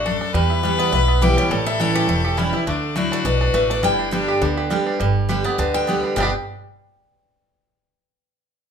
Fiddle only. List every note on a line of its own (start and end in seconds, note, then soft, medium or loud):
0.06 0.34 A4 loud
0.35 1.24 B4 loud
1.22 1.53 G4 loud
1.52 2.39 A4 loud
2.38 2.67 E4 loud
2.67 2.97 D4 medium
2.95 3.84 F#4 loud
3.83 4.12 E4 medium
4.12 4.43 D4 medium
4.42 4.87 B3 medium